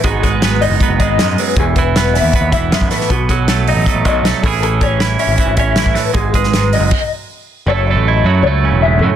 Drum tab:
CC |----------------|----------------|----------------|----------------|
HH |x-x-x-o-x-x-x-o-|x-x-x-o-x-x-x-o-|x-x-x-o-x-x-x-o-|x-x-x-o-x-x-x-o-|
SD |----o-------o---|----o-o-----o-oo|----o-------o---|----o-------o-o-|
BD |o-o-----o-o-----|o-o-----o-o--o--|o-o-----o-o---o-|--o-----o-o--o--|

CC |--------x-------|----------------|
HH |x-x-x-o---------|----------------|
SD |---oo-----------|----------------|
BD |o-o-----o-------|----------------|